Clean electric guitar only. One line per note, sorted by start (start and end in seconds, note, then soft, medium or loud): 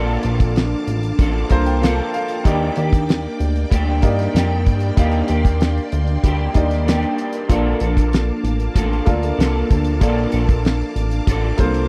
0.00 2.44 D3 medium
0.00 1.17 F3 medium
0.00 1.19 A#3 medium
0.00 1.20 D4 medium
0.00 1.20 A4 medium
1.18 1.80 F3 medium
1.18 1.82 A#3 medium
1.18 1.83 D4 medium
1.18 1.83 A4 medium
1.81 2.45 F3 medium
1.81 2.45 A#3 medium
1.81 2.45 D4 medium
1.81 2.46 A4 medium
2.44 2.76 D#3 medium
2.44 2.77 G3 medium
2.44 2.77 A#3 medium
2.44 2.77 D4 medium
2.44 2.75 G4 medium
2.76 3.71 A#3 soft
2.76 3.72 D4 soft
2.76 3.71 G4 medium
3.70 4.32 G3 medium
3.70 4.34 A#3 medium
3.70 4.35 D4 medium
3.70 4.35 G4 medium
4.33 4.96 G3 medium
4.33 4.98 A#3 medium
4.33 4.98 D4 medium
4.33 4.98 G4 medium
4.97 5.28 D#3 medium
4.97 5.29 G3 medium
4.97 5.29 A#3 medium
4.97 5.28 D4 medium
4.97 5.26 G4 medium
5.28 6.24 A#3 soft
5.28 6.25 D4 soft
5.28 6.23 G4 soft
6.23 6.85 G3 medium
6.23 6.87 A#3 medium
6.23 6.87 D4 medium
6.23 6.88 G4 medium
6.86 7.49 G3 medium
6.86 7.50 A#3 medium
6.86 7.50 D4 medium
6.86 7.50 G4 medium
7.49 7.81 A#2 medium
7.49 7.81 D3 medium
7.49 7.81 F3 medium
7.49 7.81 A#3 medium
7.49 7.81 D4 medium
7.49 7.79 A4 medium
7.81 8.73 F3 soft
7.81 8.76 A#3 soft
7.81 8.76 D4 soft
7.81 8.75 A4 soft
8.74 9.36 F3 medium
8.74 9.38 A#3 medium
8.74 9.39 D4 medium
8.74 9.39 A4 medium
9.37 10.00 F3 medium
9.37 10.01 A#3 medium
9.37 10.01 D4 medium
9.37 10.01 A4 medium
10.00 10.32 A#2 medium
10.00 10.32 D3 medium
10.00 10.33 F3 medium
10.00 10.33 A#3 medium
10.00 10.32 D4 medium
10.00 10.31 A4 medium
10.32 11.26 F3 soft
10.32 11.28 A#3 soft
10.32 11.28 D4 soft
10.32 11.27 A4 medium
11.27 11.88 F3 medium
11.27 11.88 A#3 medium
11.27 11.88 D4 medium
11.27 11.88 A4 medium